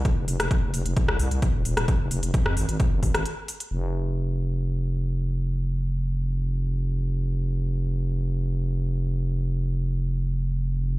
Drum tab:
HH |x-oxx-oxx-oxx-ox|x-oxx-oxx-oxx-ox|----------------|----------------|
SD |---r-----r-----r|-----r-----r----|----------------|----------------|
BD |o---o---o---o---|o---o---o-o-----|----------------|----------------|

HH |----------------|----------------|
SD |----------------|----------------|
BD |----------------|----------------|